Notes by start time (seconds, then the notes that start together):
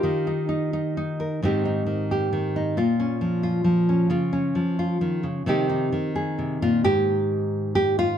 Already playing: F4 G4
0.03 D#3 D#4
0.27 D#4
0.49 D#4
0.73 D#4
0.97 D#4
1.20 A#4
1.42 G#2 D#3 C4 D#4 G4
1.65 D#4
1.86 D#3
2.11 G4
2.33 D#3
2.56 D#4
2.77 A#2 F4
3.00 C#4
3.21 F3
3.43 F4
3.64 F3
3.89 C#4
4.10 C#3 F4
4.33 C#4
4.55 F3
4.79 F4
5.01 D#3
5.23 C#3
5.46 C3 D#3 C4 D#4 G4
5.69 D#4
5.92 D#3
6.16 G#4
6.39 C3
6.62 A#2 F4
6.84 G#2 G4
7.75 G4
7.99 F4